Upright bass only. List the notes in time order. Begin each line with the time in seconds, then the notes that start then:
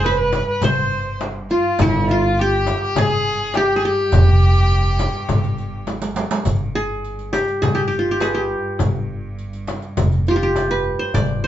Already playing: F1
0.62 G1
1.79 G1
2.96 G1
4.13 F1
5.29 G1
6.46 G1
7.63 G1
8.80 G1
9.97 F1
11.14 G1